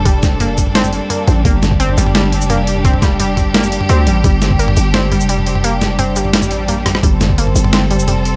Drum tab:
HH |x-x-x-x-x-x-x-x-|x-x-x-x-x-x-x-x-|x-x-x-x-x-x-x-x-|x-x-x-x-x-x-x-x-|
SH |--x---x--x------|--x---x----x----|--x------x------|--x---x----x----|
SD |--o-----o-------|--o-----o-------|--o-----o-------|--o-----o-------|
T2 |--o-o--o-o--o-o-|o-o--o-o--o-o--o|-o--o-o--o-o--o-|o--o-o--o-o--o-o|
BD |o-o---o---------|o--o------------|o-o---o---------|o--o------------|

HH |x-x-x-x-x-x-x-x-|x-x-x-x-x-x-x-x-|
SH |--x---x--x------|--x---x----x----|
SD |--o-----o-----rr|--o-----o-------|
T2 |--o-o--o-o--o-o-|o-o--o-o--o-o---|
BD |----------------|o--o------------|